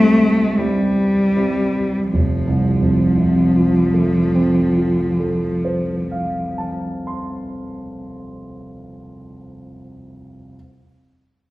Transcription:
0, 0, Header, 1, 3, 480
1, 0, Start_track
1, 0, Key_signature, -1, "major"
1, 0, Tempo, 1530612
1, 671, Time_signature, 4, 2, 24, 8
1, 1630, Tempo, 1558442
1, 3572, End_track
2, 0, Start_track
2, 0, Title_t, "Grand piano"
2, 0, Program_c, 0, 0
2, 0, Control_c, 0, 64, 127
2, 0, Note_on_c, 0, 43, 36
2, 0, Note_on_c, 0, 55, 31
2, 0, Note_on_c, 0, 60, 33
2, 0, Note_on_c, 0, 64, 35
2, 171, Note_off_c, 0, 55, 0
2, 171, Note_off_c, 0, 60, 0
2, 171, Note_off_c, 0, 64, 0
2, 182, Note_on_c, 0, 55, 31
2, 182, Note_on_c, 0, 60, 33
2, 184, Note_on_c, 0, 64, 36
2, 413, Note_off_c, 0, 55, 0
2, 413, Note_off_c, 0, 60, 0
2, 414, Note_off_c, 0, 64, 0
2, 426, Note_on_c, 0, 55, 33
2, 426, Note_on_c, 0, 60, 29
2, 426, Note_on_c, 0, 64, 34
2, 659, Note_off_c, 0, 55, 0
2, 659, Note_off_c, 0, 60, 0
2, 659, Note_off_c, 0, 64, 0
2, 670, Note_on_c, 0, 29, 39
2, 679, Control_c, 0, 64, 0
2, 680, Note_off_c, 0, 43, 0
2, 755, Control_c, 0, 64, 127
2, 774, Note_on_c, 0, 36, 39
2, 882, Note_on_c, 0, 41, 38
2, 996, Note_on_c, 0, 48, 39
2, 1116, Note_on_c, 0, 53, 41
2, 1235, Note_on_c, 0, 57, 36
2, 1363, Note_on_c, 0, 60, 37
2, 1495, Note_on_c, 0, 65, 35
2, 1630, Note_on_c, 0, 69, 32
2, 1768, Note_on_c, 0, 72, 32
2, 1912, Note_on_c, 0, 77, 32
2, 2056, Note_on_c, 0, 81, 31
2, 2100, Note_off_c, 0, 29, 0
2, 2203, Note_off_c, 0, 36, 0
2, 2206, Note_on_c, 0, 84, 30
2, 2309, Note_off_c, 0, 41, 0
2, 2421, Note_off_c, 0, 48, 0
2, 2538, Note_off_c, 0, 53, 0
2, 2656, Note_off_c, 0, 57, 0
2, 2781, Note_off_c, 0, 60, 0
2, 2910, Note_off_c, 0, 65, 0
2, 3034, Note_off_c, 0, 69, 0
2, 3034, Note_off_c, 0, 72, 0
2, 3034, Note_off_c, 0, 81, 0
2, 3034, Note_off_c, 0, 84, 0
2, 3035, Note_off_c, 0, 77, 0
2, 3280, Control_c, 0, 64, 0
2, 3572, End_track
3, 0, Start_track
3, 0, Title_t, "Cello"
3, 0, Program_c, 1, 42
3, 0, Note_on_c, 1, 57, 76
3, 180, Note_on_c, 1, 55, 52
3, 185, Note_off_c, 1, 57, 0
3, 663, Note_off_c, 1, 55, 0
3, 665, Note_on_c, 1, 53, 56
3, 2096, Note_off_c, 1, 53, 0
3, 3572, End_track
0, 0, End_of_file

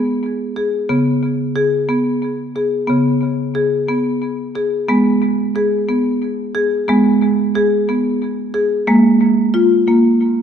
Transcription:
0, 0, Header, 1, 2, 480
1, 0, Start_track
1, 0, Tempo, 665188
1, 645, Time_signature, 3, 2, 24, 8
1, 7520, End_track
2, 0, Start_track
2, 0, Title_t, "Marimba"
2, 0, Program_c, 0, 12
2, 0, Note_on_c, 0, 56, 69
2, 0, Note_on_c, 0, 59, 61
2, 406, Note_off_c, 0, 59, 0
2, 407, Note_on_c, 0, 68, 59
2, 618, Note_off_c, 0, 56, 0
2, 645, Note_on_c, 0, 49, 70
2, 645, Note_on_c, 0, 59, 73
2, 646, Note_off_c, 0, 68, 0
2, 1123, Note_on_c, 0, 68, 72
2, 1126, Note_off_c, 0, 59, 0
2, 1362, Note_on_c, 0, 59, 64
2, 1365, Note_off_c, 0, 68, 0
2, 1845, Note_off_c, 0, 59, 0
2, 1846, Note_on_c, 0, 68, 63
2, 2059, Note_off_c, 0, 49, 0
2, 2075, Note_on_c, 0, 59, 75
2, 2087, Note_off_c, 0, 68, 0
2, 2090, Note_on_c, 0, 49, 67
2, 2562, Note_off_c, 0, 59, 0
2, 2562, Note_on_c, 0, 68, 73
2, 2804, Note_on_c, 0, 59, 64
2, 2805, Note_off_c, 0, 68, 0
2, 3286, Note_off_c, 0, 59, 0
2, 3287, Note_on_c, 0, 68, 64
2, 3501, Note_off_c, 0, 49, 0
2, 3525, Note_on_c, 0, 59, 81
2, 3527, Note_off_c, 0, 68, 0
2, 3530, Note_on_c, 0, 56, 64
2, 4006, Note_off_c, 0, 59, 0
2, 4009, Note_on_c, 0, 68, 73
2, 4247, Note_on_c, 0, 59, 65
2, 4248, Note_off_c, 0, 68, 0
2, 4724, Note_on_c, 0, 68, 72
2, 4727, Note_off_c, 0, 59, 0
2, 4939, Note_off_c, 0, 56, 0
2, 4965, Note_off_c, 0, 68, 0
2, 4965, Note_on_c, 0, 59, 86
2, 4972, Note_on_c, 0, 56, 79
2, 5445, Note_off_c, 0, 59, 0
2, 5451, Note_on_c, 0, 68, 86
2, 5688, Note_off_c, 0, 68, 0
2, 5692, Note_on_c, 0, 59, 62
2, 6163, Note_on_c, 0, 68, 73
2, 6168, Note_off_c, 0, 59, 0
2, 6378, Note_off_c, 0, 56, 0
2, 6403, Note_off_c, 0, 68, 0
2, 6403, Note_on_c, 0, 58, 86
2, 6406, Note_on_c, 0, 56, 75
2, 6883, Note_off_c, 0, 58, 0
2, 6883, Note_on_c, 0, 65, 79
2, 7123, Note_off_c, 0, 65, 0
2, 7127, Note_on_c, 0, 58, 67
2, 7520, Note_off_c, 0, 56, 0
2, 7520, Note_off_c, 0, 58, 0
2, 7520, End_track
0, 0, End_of_file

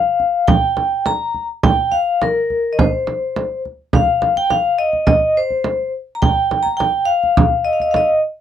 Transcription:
0, 0, Header, 1, 3, 480
1, 0, Start_track
1, 0, Tempo, 574163
1, 1358, Time_signature, 4, 2, 24, 8
1, 7030, End_track
2, 0, Start_track
2, 0, Title_t, "Vibraphone"
2, 0, Program_c, 0, 11
2, 0, Note_on_c, 0, 77, 95
2, 397, Note_on_c, 0, 79, 96
2, 417, Note_off_c, 0, 77, 0
2, 890, Note_on_c, 0, 82, 101
2, 892, Note_off_c, 0, 79, 0
2, 1220, Note_off_c, 0, 82, 0
2, 1366, Note_on_c, 0, 79, 104
2, 1602, Note_on_c, 0, 77, 83
2, 1610, Note_off_c, 0, 79, 0
2, 1848, Note_off_c, 0, 77, 0
2, 1862, Note_on_c, 0, 70, 77
2, 2280, Note_on_c, 0, 75, 51
2, 2286, Note_off_c, 0, 70, 0
2, 2329, Note_off_c, 0, 75, 0
2, 2335, Note_on_c, 0, 72, 70
2, 3015, Note_off_c, 0, 72, 0
2, 3302, Note_on_c, 0, 77, 92
2, 3627, Note_off_c, 0, 77, 0
2, 3655, Note_on_c, 0, 79, 91
2, 3767, Note_on_c, 0, 77, 82
2, 3772, Note_off_c, 0, 79, 0
2, 4001, Note_on_c, 0, 75, 76
2, 4012, Note_off_c, 0, 77, 0
2, 4226, Note_off_c, 0, 75, 0
2, 4236, Note_on_c, 0, 75, 81
2, 4486, Note_off_c, 0, 75, 0
2, 4492, Note_on_c, 0, 72, 67
2, 4933, Note_off_c, 0, 72, 0
2, 5141, Note_on_c, 0, 82, 74
2, 5199, Note_on_c, 0, 79, 96
2, 5200, Note_off_c, 0, 82, 0
2, 5540, Note_on_c, 0, 82, 92
2, 5570, Note_off_c, 0, 79, 0
2, 5658, Note_on_c, 0, 79, 86
2, 5673, Note_off_c, 0, 82, 0
2, 5897, Note_on_c, 0, 77, 87
2, 5916, Note_off_c, 0, 79, 0
2, 6391, Note_on_c, 0, 75, 58
2, 6401, Note_off_c, 0, 77, 0
2, 6461, Note_off_c, 0, 75, 0
2, 6462, Note_on_c, 0, 77, 58
2, 6530, Note_off_c, 0, 77, 0
2, 6534, Note_on_c, 0, 75, 58
2, 6599, Note_off_c, 0, 75, 0
2, 6613, Note_on_c, 0, 77, 56
2, 6657, Note_on_c, 0, 75, 76
2, 6672, Note_off_c, 0, 77, 0
2, 6857, Note_off_c, 0, 75, 0
2, 7030, End_track
3, 0, Start_track
3, 0, Title_t, "Frame drum"
3, 164, Note_on_c, 9, 64, 23
3, 248, Note_off_c, 9, 64, 0
3, 401, Note_on_c, 9, 64, 76
3, 485, Note_off_c, 9, 64, 0
3, 642, Note_on_c, 9, 64, 45
3, 725, Note_off_c, 9, 64, 0
3, 884, Note_on_c, 9, 64, 55
3, 967, Note_off_c, 9, 64, 0
3, 1123, Note_on_c, 9, 64, 23
3, 1206, Note_off_c, 9, 64, 0
3, 1366, Note_on_c, 9, 64, 79
3, 1450, Note_off_c, 9, 64, 0
3, 1605, Note_on_c, 9, 64, 23
3, 1689, Note_off_c, 9, 64, 0
3, 1853, Note_on_c, 9, 64, 54
3, 1936, Note_off_c, 9, 64, 0
3, 2091, Note_on_c, 9, 64, 22
3, 2175, Note_off_c, 9, 64, 0
3, 2331, Note_on_c, 9, 64, 70
3, 2414, Note_off_c, 9, 64, 0
3, 2568, Note_on_c, 9, 64, 44
3, 2652, Note_off_c, 9, 64, 0
3, 2812, Note_on_c, 9, 64, 52
3, 2896, Note_off_c, 9, 64, 0
3, 3055, Note_on_c, 9, 64, 20
3, 3138, Note_off_c, 9, 64, 0
3, 3286, Note_on_c, 9, 64, 71
3, 3370, Note_off_c, 9, 64, 0
3, 3527, Note_on_c, 9, 64, 50
3, 3611, Note_off_c, 9, 64, 0
3, 3646, Note_on_c, 9, 64, 23
3, 3730, Note_off_c, 9, 64, 0
3, 3765, Note_on_c, 9, 64, 53
3, 3848, Note_off_c, 9, 64, 0
3, 4122, Note_on_c, 9, 64, 22
3, 4206, Note_off_c, 9, 64, 0
3, 4238, Note_on_c, 9, 64, 68
3, 4322, Note_off_c, 9, 64, 0
3, 4601, Note_on_c, 9, 64, 21
3, 4684, Note_off_c, 9, 64, 0
3, 4718, Note_on_c, 9, 64, 51
3, 4802, Note_off_c, 9, 64, 0
3, 5203, Note_on_c, 9, 64, 67
3, 5287, Note_off_c, 9, 64, 0
3, 5444, Note_on_c, 9, 64, 49
3, 5528, Note_off_c, 9, 64, 0
3, 5567, Note_on_c, 9, 64, 22
3, 5651, Note_off_c, 9, 64, 0
3, 5687, Note_on_c, 9, 64, 58
3, 5770, Note_off_c, 9, 64, 0
3, 6046, Note_on_c, 9, 64, 21
3, 6130, Note_off_c, 9, 64, 0
3, 6162, Note_on_c, 9, 64, 78
3, 6246, Note_off_c, 9, 64, 0
3, 6518, Note_on_c, 9, 64, 24
3, 6602, Note_off_c, 9, 64, 0
3, 6639, Note_on_c, 9, 64, 59
3, 6723, Note_off_c, 9, 64, 0
3, 7030, End_track
0, 0, End_of_file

